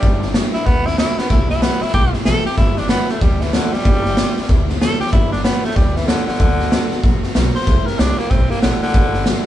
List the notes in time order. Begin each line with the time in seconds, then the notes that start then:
Already playing: G3
0.02 G1 G3 B3 D4 E4, kick, snare
0.22 B3 D4 E4, snare
0.34 G3 B3 D4 E4, snare, hi-hat pedal
0.54 B3 D4 E4, muted upright bass stroke, snare
0.66 D2 G3 B3 D4 E4, kick, snare
0.86 B3 D4 E4, snare
0.98 G3 B3 D4 E4, snare, hi-hat pedal
1.17 B3 D4 E4, muted upright bass stroke, snare
1.29 C2 C3 E3 G3 A3 E4 G4, kick, snare
1.49 G3 A3 E4 G4, snare
1.62 C3 E3 G3 A3 B3 E4 G4, snare, hi-hat pedal
1.82 G3 A3 E4 G4, muted upright bass stroke, snare
1.88 snare
1.94 B1 G3 A3 E4 G4, kick, snare
2.13 G3 A3 E4 G4, muted upright bass stroke, snare
2.25 A1 C3 E3 G3 A3 E4 G4 A4, snare, hi-hat pedal
2.46 G3 A3 E4 G4, muted upright bass stroke, snare
2.52 snare
2.57 G1 G2 D3 E3 G3 B3 E4, kick, snare
2.77 E3 G3 B3 D4 E4, snare
2.89 G2 D3 E3 G3 B3 E4, snare, hi-hat pedal
3.09 E3 G3 A3 B3 E4, muted upright bass stroke, snare
3.21 D2 E3 G3 B3 E4, kick, snare
3.41 E3 G3 B3 E4, snare
3.53 G2 D3 E3 G3 B3 E4, snare, hi-hat pedal
3.73 E3 G3 B3 E4, muted upright bass stroke, snare
3.79 snare
3.85 G1 G2 D3 E3 G3 B3 E4, kick, snare
4.05 E3 G3 B3 E4, snare
4.17 G2 D3 E3 G3 B3 E4, snare, hi-hat pedal
4.37 E3 G3 B3 E4, muted upright bass stroke, snare
4.43 snare
4.49 D2 E3 G3 B3 E4, kick, snare
4.68 E3 G3 B3 E4, snare
4.80 G2 D3 E3 G3 B3 E4 A4, snare, hi-hat pedal
5.00 E3 G3 B3 E4 G4, muted upright bass stroke, snare
5.07 snare
5.12 G1 G2 D3 E3 G3 B3 E4, kick, snare
5.32 E3 G3 B3 D4 E4, snare
5.44 G2 D3 E3 G3 B3 E4, snare, hi-hat pedal
5.64 E3 G3 A3 B3 E4, muted upright bass stroke, snare
5.71 snare
5.76 D2 E3 G3 B3 E4, kick, snare
5.96 E3 G3 B3 E4, snare
6.07 G2 D3 E3 G3 B3 E4, snare, hi-hat pedal
6.27 D3 E3 G3 B3 E4, muted upright bass stroke, snare
6.34 snare
6.40 D2 D3 F#3 A3 B3 F#4, kick, snare
6.60 A3 B3 F#4, snare
6.72 D3 F#3 A3 B3 F#4, snare, hi-hat pedal
6.91 A3 B3 F#4, muted upright bass stroke, snare
7.04 A1 F#3 A3 B3 F#4, kick, snare
7.23 A3 B3 F#4, muted upright bass stroke, snare
7.35 B1 D3 F#3 A3 B3 F#4, snare, hi-hat pedal
7.55 A3 B3 F#4 C5, snare
7.61 snare
7.67 C2 C3 E3 A3 E4 G4, kick, snare
7.86 A3 E4 G4 A#4, muted upright bass stroke, snare
7.99 C2 C3 E3 A3 D4 E4 G4, snare, hi-hat pedal
8.19 A3 A#3 E4 G4, snare
8.30 B1 E3 A3 C4 E4 G4, kick, snare
8.50 A3 A#3 E4 G4, muted upright bass stroke, snare
8.62 A1 C3 D3 E3 A3 E4 G4, snare, hi-hat pedal
8.82 D3 A3 E4 G4, muted upright bass stroke, snare
8.89 snare
8.94 G1 G2 D3 E3 G3 B3 E4, kick, snare
9.14 E3 G3 B3 E4, snare
9.26 G2 D3 E3 G3 B3 E4, snare, hi-hat pedal